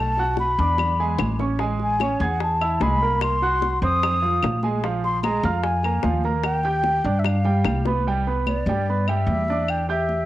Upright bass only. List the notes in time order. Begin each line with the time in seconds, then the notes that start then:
Already playing: B1
0.59 E2
1.19 A1
2.20 E2
2.81 C2
3.82 F2
4.43 A#1
5.43 F2
6.04 D#2
7.04 G2
7.65 C2
8.66 G2
9.26 E2